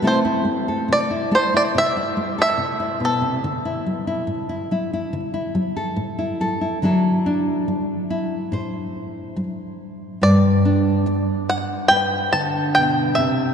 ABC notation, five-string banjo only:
X:1
M:4/4
L:1/16
Q:1/4=71
K:G
V:1 name="Five-string banjo"
c2 z2 d2 c d e3 e3 A2- | A8 z8 | z16 | d6 f2 g2 a2 g2 e2 |]